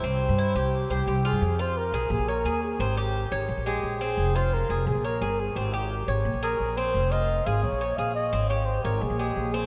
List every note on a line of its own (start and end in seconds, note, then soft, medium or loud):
0.00 0.28 C2 medium
0.00 0.37 C4 medium
0.00 0.86 C5 medium
0.29 0.54 G2 medium
0.38 0.55 E4 medium
0.55 0.88 C2 medium
0.55 0.89 G4 medium
0.90 1.06 C2 medium
0.90 1.28 G4 medium
0.90 1.07 C5 medium
1.07 1.32 C2 medium
1.07 1.24 G4 medium
1.25 1.42 F4 medium
1.25 1.62 G#4 medium
1.32 1.41 G2 medium
1.41 1.91 F2 loud
1.59 1.93 F4 medium
1.59 1.79 C5 loud
1.77 2.12 A#4 loud
1.92 2.09 B1 medium
1.92 2.27 G#4 medium
2.10 2.18 A#1 loud
2.10 2.30 G#4 medium
2.19 2.44 A#1 medium
2.28 2.62 A#4 loud
2.28 2.45 C#5 medium
2.45 2.78 D#2 medium
2.45 2.79 G#4 medium
2.63 2.82 G#4 medium
2.79 3.29 G#1 loud
2.79 2.97 C4 medium
2.79 3.49 G4 medium
2.97 3.31 G4 medium
3.31 3.48 G#1 medium
3.31 3.65 C#5 medium
3.49 3.57 A#1 medium
3.57 3.82 A#1 medium
3.66 4.00 G#3 medium
3.66 4.04 G4 medium
3.83 4.16 A#1 medium
4.01 4.34 C4 medium
4.01 4.37 G#4 medium
4.17 4.67 F1 loud
4.36 4.69 F4 medium
4.36 4.55 C5 medium
4.54 4.86 A#4 loud
4.69 4.86 F1 medium
4.69 5.03 G#4 medium
4.87 4.95 A#1 loud
4.87 5.06 G#4 medium
4.95 5.20 A#1 medium
5.04 5.41 A#4 loud
5.04 5.21 C#5 medium
5.21 5.54 G1 medium
5.21 5.55 G#4 medium
5.40 5.57 G#4 medium
5.55 6.05 G#1 loud
5.55 5.73 C4 medium
5.55 5.98 G4 medium
5.73 6.07 G4 medium
6.08 6.24 G#1 medium
6.08 6.42 C#5 medium
6.25 6.33 A#1 loud
6.34 6.58 A#1 medium
6.43 6.76 G#4 medium
6.43 6.79 A#4 loud
6.60 6.93 A#1 medium
6.77 7.11 C4 medium
6.77 7.13 C5 loud
6.94 7.44 F1 medium
7.11 7.45 F4 medium
7.11 7.47 D#5 loud
7.46 7.63 G#1 loud
7.46 7.80 G#4 medium
7.46 7.63 F5 medium
7.63 7.72 A#1 medium
7.63 7.98 C#5 medium
7.72 7.97 A#1 medium
7.81 7.98 C#5 medium
7.97 8.31 A#1 medium
7.97 8.32 G#4 medium
7.97 8.14 F5 loud
8.15 8.47 D#5 loud
8.33 8.82 G#1 medium
8.33 8.50 C4 medium
8.49 8.84 G4 medium
8.49 8.67 C#5 medium
8.65 8.83 C5 medium
8.83 9.01 G#1 loud
8.83 9.03 A#4 medium
8.83 9.18 C#5 medium
9.01 9.09 A#1 loud
9.01 9.20 G#4 medium
9.10 9.35 A#1 medium
9.19 9.53 G#3 medium
9.19 9.54 G4 loud
9.36 9.66 A#1 medium
9.53 9.66 C4 medium
9.53 9.66 G#4 medium